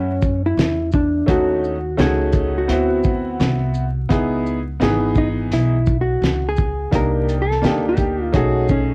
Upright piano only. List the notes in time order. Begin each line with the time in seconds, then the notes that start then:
Already playing: E4 F#4
1.26 A3 C#4 D#4 F#4
1.97 A3 C#4 D#4 F#4
2.68 B3 C4 E4 F#4
4.09 B3 D#4 E4 G#4
4.80 E3 B3 D#4 G#4
6.91 A#3 D4 D#4 G4
7.62 A#3 D4 D#4 G4
8.33 A3 C#4 D#4 G#4